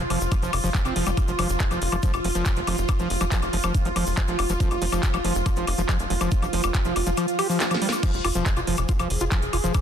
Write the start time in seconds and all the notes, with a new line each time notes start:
Already playing: F4
0.10 F1 F3, open hi-hat, high woodblock
0.21 F1, closed hi-hat, shaker
0.32 F3, kick, closed hi-hat, high woodblock, shaker
0.42 F1 F3, closed hi-hat, shaker
0.53 F1, open hi-hat, high woodblock
0.64 F1 F3, open hi-hat, shaker
0.74 F3, kick, clap, closed hi-hat, shaker
0.85 F1 C4, closed hi-hat, high woodblock, shaker
0.96 F1 F3, open hi-hat
1.06 F1 G3, closed hi-hat, high woodblock, shaker
1.17 kick, closed hi-hat, high woodblock, shaker
1.28 F1 F3, closed hi-hat, shaker
1.39 F1 F3, open hi-hat, high woodblock
1.49 F1, closed hi-hat, shaker
1.60 F3, kick, clap, closed hi-hat, shaker
1.71 F1 F3, closed hi-hat, high woodblock, shaker
1.82 F1, open hi-hat
1.92 F1 F3, closed hi-hat, high woodblock, shaker
2.03 F3, kick, closed hi-hat, shaker
2.14 F1, closed hi-hat, high woodblock, shaker
2.24 F1 F3, open hi-hat
2.35 F1 F3, closed hi-hat, shaker
2.46 kick, clap, closed hi-hat, high woodblock, shaker
2.56 F1 F3, closed hi-hat, shaker
2.67 F1 F3, open hi-hat, high woodblock
2.78 F1, closed hi-hat, shaker
2.89 F3, kick, closed hi-hat, high woodblock, shaker
2.99 F1 F3, closed hi-hat, shaker
3.10 F1, open hi-hat
3.21 F1 F3, closed hi-hat, high woodblock, shaker
3.32 F3, kick, clap, closed hi-hat, shaker
3.42 F1, closed hi-hat, high woodblock, shaker
3.53 F1 F3, open hi-hat
3.63 F1 F3, high woodblock, shaker
3.74 kick, closed hi-hat, shaker
3.85 F1 F3, closed hi-hat, shaker
3.96 F1 F3, open hi-hat, high woodblock
4.07 F1, open hi-hat, shaker
4.17 F3, kick, clap, closed hi-hat, high woodblock, shaker
4.28 F1 F3, closed hi-hat, shaker
4.39 F1, open hi-hat, high woodblock
4.49 F1 F3, closed hi-hat, shaker
4.60 F3, kick, closed hi-hat, shaker
4.71 F1, closed hi-hat, high woodblock, shaker
4.82 F1 F3, open hi-hat
4.92 F1 F3, closed hi-hat, high woodblock, shaker
5.03 kick, clap, closed hi-hat, shaker
5.14 F1 F3, closed hi-hat, high woodblock, shaker
5.24 F1 F3, open hi-hat
5.35 F1, closed hi-hat, shaker
5.46 F3, kick, closed hi-hat, high woodblock, shaker
5.56 F1 F3, closed hi-hat, shaker
5.67 F1, open hi-hat, high woodblock
5.78 F1 F3, closed hi-hat, shaker
5.89 F3, kick, clap, closed hi-hat, high woodblock, shaker
5.99 F1, closed hi-hat, shaker
6.10 F1 F3, open hi-hat
6.21 F1 F3, closed hi-hat, high woodblock, shaker
6.31 kick, closed hi-hat, shaker
6.42 F1 F3, closed hi-hat, high woodblock, shaker
6.53 F1 F3, open hi-hat
6.63 F1, high woodblock, shaker
6.74 F3, kick, clap, closed hi-hat, shaker
6.85 F1 F3, closed hi-hat, shaker
6.96 F1, open hi-hat, high woodblock
7.06 F1 F3, closed hi-hat, shaker
7.17 F3, closed hi-hat, high woodblock, shaker
7.28 closed hi-hat, shaker
7.39 G4, open hi-hat, high woodblock
7.49 F3, open hi-hat, shaker
7.60 snare, clap, closed hi-hat, shaker
7.71 F3, snare, closed hi-hat, high woodblock, shaker
7.82 G3, open hi-hat
7.89 snare, closed hi-hat, high woodblock, shaker
8.03 F3 G#4, kick, closed hi-hat, crash, high woodblock, shaker
8.14 F1, closed hi-hat, shaker
8.24 F1 F4, open hi-hat, high woodblock
8.35 F1 F3, closed hi-hat, shaker
8.46 kick, clap, closed hi-hat, shaker
8.57 F1 F4, closed hi-hat, high woodblock, shaker
8.67 F1 F3, open hi-hat
8.77 F1, closed hi-hat, high woodblock, shaker
8.89 F4, kick, closed hi-hat, shaker
8.99 F1 F3, closed hi-hat, high woodblock, shaker
9.10 F1, open hi-hat
9.20 F1 F4, closed hi-hat, shaker
9.32 F3, kick, clap, closed hi-hat, high woodblock, shaker
9.42 F1, closed hi-hat, shaker
9.53 F1 F4, open hi-hat, high woodblock
9.64 F1 F3, closed hi-hat, shaker
9.74 kick, closed hi-hat, high woodblock, shaker